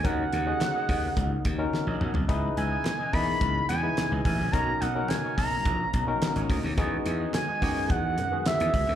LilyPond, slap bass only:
\new Staff \with { instrumentName = "Slap bass" } { \clef bass \time 4/4 \key cis \dorian \tempo 4 = 107 dis,8 dis,8 r8 dis,8 cis,8 dis,8 r16 ais,,16 b,,16 bis,,16 | cis,8 cis,8 r8 e,8 cis,8 e,8 r16 cis,16 a,,16 ais,,16 | b,,8 b,,8 r8 b,,8 ais,,8 b,,8 r16 gis,,16 d,16 dis,16 | e,8 e,8 r8 fis,8 e,8 fis,8 r16 e,16 cis,16 d,16 | }